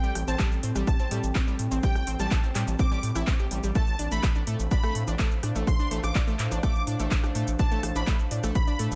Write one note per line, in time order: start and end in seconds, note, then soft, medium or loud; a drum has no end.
0.00 0.11 A1 medium
0.00 0.15 G3 loud
0.00 5.26 C4 medium
0.00 4.64 A4 medium
0.00 0.13 G5 loud
0.00 5.07 G5 medium
0.00 shaker soft
0.15 0.23 A1 loud
0.15 cross-stick medium
0.15 open hi-hat loud
0.28 0.35 A1 medium
0.28 0.36 C4 medium
0.28 0.42 A5 medium
0.28 shaker medium
0.39 0.48 A1 loud
0.39 0.51 G3 loud
0.39 kick loud
0.39 clap loud
0.39 shaker medium
0.52 0.59 A1 medium
0.52 shaker soft
0.63 0.71 A2 medium
0.63 0.72 C4 medium
0.63 open hi-hat loud
0.76 0.83 A1 medium
0.76 0.87 G3 loud
0.76 cross-stick medium
0.76 shaker medium
0.87 0.95 A1 loud
0.87 1.09 A5 loud
0.87 kick loud
0.87 shaker medium
1.00 1.07 A1 medium
1.00 1.08 C4 medium
1.00 shaker soft
1.11 1.19 A2 loud
1.11 1.23 G3 loud
1.11 open hi-hat loud
1.23 1.31 A1 medium
1.23 shaker medium
1.35 1.43 A1 loud
1.35 1.44 C4 medium
1.35 kick loud
1.35 cross-stick medium
1.35 clap loud
1.35 shaker medium
1.47 1.55 A1 medium
1.47 1.59 G3 loud
1.47 shaker soft
1.59 1.67 A2 medium
1.59 open hi-hat loud
1.71 1.79 A1 medium
1.71 1.79 C4 medium
1.71 shaker medium
1.83 1.91 A1 loud
1.83 1.95 G3 loud
1.83 2.05 G5 loud
1.83 kick loud
1.83 shaker medium
1.95 2.03 A1 medium
1.95 cross-stick medium
1.95 shaker soft
2.07 2.15 A1 loud
2.07 2.16 C4 medium
2.07 open hi-hat loud
2.19 2.27 A1 medium
2.19 2.31 G3 loud
2.19 2.34 A5 medium
2.19 shaker medium
2.31 2.39 A1 loud
2.31 kick loud
2.31 clap loud
2.31 shaker medium
2.43 2.51 A1 medium
2.43 2.52 C4 medium
2.43 shaker soft
2.55 2.63 A2 loud
2.55 2.67 G3 loud
2.55 cross-stick medium
2.55 clap medium
2.55 open hi-hat loud
2.67 2.75 A1 medium
2.67 shaker medium
2.79 2.87 A1 loud
2.79 2.88 C4 medium
2.79 3.01 D6 loud
2.79 kick loud
2.79 shaker medium
2.91 2.99 A1 medium
2.91 3.03 G3 loud
2.91 shaker soft
3.03 3.11 A2 loud
3.03 open hi-hat loud
3.15 3.23 A1 medium
3.15 3.20 E4 loud
3.15 cross-stick medium
3.15 shaker medium
3.27 3.35 A1 loud
3.27 3.32 C4 loud
3.27 kick loud
3.27 clap loud
3.27 shaker medium
3.39 3.47 A1 medium
3.39 3.44 G4 medium
3.39 shaker soft
3.51 3.59 A1 medium
3.51 3.60 G3 medium
3.51 open hi-hat loud
3.63 3.71 A1 medium
3.63 3.68 G3 medium
3.63 shaker medium
3.75 3.83 A1 loud
3.75 3.87 A3 loud
3.75 8.95 D4 medium
3.75 3.97 A5 loud
3.75 kick loud
3.75 shaker medium
3.87 3.95 A1 medium
3.87 shaker soft
3.99 4.07 A1 loud
3.99 4.08 D4 medium
3.99 open hi-hat loud
4.09 4.19 A1 medium
4.09 4.23 A3 loud
4.09 8.95 C5 medium
4.09 4.26 B5 medium
4.09 shaker medium
4.16 8.95 F5 medium
4.23 4.31 A1 loud
4.23 kick loud
4.23 cross-stick medium
4.23 clap loud
4.23 shaker medium
4.35 4.43 A1 medium
4.35 4.43 D4 medium
4.35 shaker soft
4.47 4.55 A2 medium
4.47 4.59 A3 loud
4.47 open hi-hat loud
4.59 4.67 A1 medium
4.59 shaker medium
4.71 4.79 A1 loud
4.71 4.80 D4 medium
4.71 4.93 B5 loud
4.71 kick loud
4.71 shaker medium
4.83 4.91 A1 medium
4.83 4.95 A3 loud
4.83 cross-stick medium
4.83 shaker soft
4.95 5.03 A2 loud
4.95 open hi-hat loud
5.07 5.15 A1 medium
5.07 5.15 D4 medium
5.07 shaker medium
5.19 5.27 A1 loud
5.19 5.31 A3 loud
5.19 kick loud
5.19 clap loud
5.19 shaker medium
5.31 5.39 A1 medium
5.31 shaker soft
5.43 5.51 A2 loud
5.43 5.52 D4 medium
5.43 cross-stick medium
5.43 open hi-hat loud
5.55 5.63 A1 medium
5.55 5.67 A3 loud
5.55 shaker medium
5.67 5.75 A1 loud
5.67 5.89 C6 loud
5.67 kick loud
5.67 shaker medium
5.79 5.87 A1 medium
5.79 5.87 D4 medium
5.79 shaker soft
5.91 5.99 A1 medium
5.91 6.03 A3 loud
5.91 open hi-hat loud
6.03 6.11 A1 medium
6.03 6.18 D6 medium
6.03 cross-stick medium
6.03 shaker medium
6.15 6.23 A1 loud
6.15 6.24 D4 medium
6.15 kick loud
6.15 clap loud
6.15 shaker medium
6.27 6.35 A1 medium
6.27 6.39 A3 loud
6.27 shaker soft
6.39 6.47 A2 medium
6.39 clap medium
6.39 open hi-hat loud
6.51 6.59 A1 medium
6.51 6.59 D4 medium
6.51 shaker medium
6.63 6.71 A1 loud
6.63 6.75 A3 loud
6.63 6.85 D6 loud
6.63 kick loud
6.63 cross-stick medium
6.63 shaker medium
6.76 6.83 A1 medium
6.76 shaker soft
6.87 6.95 A2 loud
6.87 6.96 D4 medium
6.87 open hi-hat loud
6.99 7.07 A1 medium
6.99 7.11 A3 loud
6.99 shaker medium
7.11 7.19 A1 loud
7.11 kick loud
7.11 clap loud
7.11 shaker medium
7.23 7.31 A1 medium
7.23 7.32 D4 medium
7.23 cross-stick medium
7.23 shaker soft
7.35 7.43 A2 loud
7.35 7.47 A3 loud
7.35 open hi-hat loud
7.47 7.55 A1 medium
7.47 shaker medium
7.59 7.67 A1 loud
7.59 7.68 D4 medium
7.59 7.81 A5 loud
7.59 kick loud
7.59 shaker medium
7.71 7.79 A1 medium
7.71 7.83 A3 loud
7.71 shaker soft
7.83 7.91 A1 medium
7.83 cross-stick medium
7.83 open hi-hat loud
7.95 8.03 A1 medium
7.95 8.04 D4 medium
7.95 8.09 B5 medium
7.95 shaker medium
8.07 8.15 A1 loud
8.07 8.19 A3 loud
8.07 kick loud
8.07 clap loud
8.07 shaker medium
8.19 8.27 A1 medium
8.19 shaker soft
8.31 8.39 A2 medium
8.31 8.40 D4 medium
8.31 open hi-hat loud
8.43 8.51 A1 medium
8.43 8.55 A3 loud
8.43 cross-stick medium
8.43 shaker medium
8.55 8.63 A1 loud
8.55 8.77 B5 loud
8.55 kick loud
8.55 shaker medium
8.67 8.75 A1 medium
8.67 8.75 D4 medium
8.67 shaker soft
8.79 8.87 A2 loud
8.79 8.91 A3 loud
8.79 open hi-hat loud
8.92 8.95 A1 medium
8.92 shaker medium